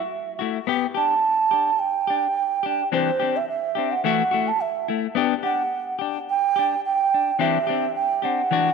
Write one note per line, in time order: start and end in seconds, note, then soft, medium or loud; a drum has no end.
0.00 0.40 E5 medium
0.39 0.58 A3 soft
0.39 0.58 E4 medium
0.39 0.57 F#4 medium
0.67 0.85 B3 medium
0.67 0.86 G4 medium
0.67 muted clean electric guitar stroke medium
0.94 1.14 D4 soft
0.94 1.13 G4 medium
0.94 1.81 A5 medium
1.51 1.70 D4 soft
1.51 1.69 G4 soft
1.79 2.92 G5 medium
2.07 2.27 D4 soft
2.07 2.25 G4 soft
2.63 2.83 D4 soft
2.63 2.81 G4 medium
2.92 3.10 E3 medium
2.92 3.10 C4 medium
2.92 3.10 D4 medium
2.92 3.10 G4 medium
2.92 3.38 C5 medium
3.20 3.39 C4 soft
3.20 3.38 D4 soft
3.20 3.37 G4 medium
3.36 3.48 E5 medium
3.49 3.93 E5 medium
3.75 3.95 C4 soft
3.75 3.94 D4 soft
3.75 3.93 G4 soft
3.92 4.04 F#5 medium
4.04 4.22 E3 medium
4.04 4.22 A3 medium
4.04 4.22 E4 medium
4.04 4.23 F#4 medium
4.04 4.49 F#5 medium
4.31 4.51 A3 soft
4.31 4.50 E4 soft
4.31 4.49 F#4 medium
4.48 4.62 A5 medium
4.61 5.03 E5 medium
4.88 5.06 A3 soft
4.88 5.06 E4 soft
5.15 5.33 B3 medium
5.15 5.34 D4 medium
5.15 5.34 G4 medium
5.43 5.62 D4 soft
5.43 5.61 G4 medium
5.43 5.96 F#5 medium
5.99 6.18 D4 soft
5.99 6.17 G4 soft
6.30 6.81 G5 medium
6.56 6.75 D4 soft
6.56 6.73 G4 medium
6.86 7.37 G5 medium
7.14 7.31 D4 soft
7.39 7.57 E3 medium
7.39 7.57 C4 medium
7.39 7.57 D4 medium
7.39 7.58 G4 medium
7.39 7.92 E5 medium
7.67 7.86 C4 soft
7.67 7.86 D4 soft
7.67 7.85 G4 medium
7.95 8.26 G5 medium
8.22 8.42 C4 soft
8.22 8.41 D4 soft
8.22 8.40 G4 soft
8.22 8.74 F#5 medium
8.51 8.69 E3 medium
8.51 8.70 D4 medium
8.51 8.70 F#4 medium
8.51 muted clean electric guitar stroke medium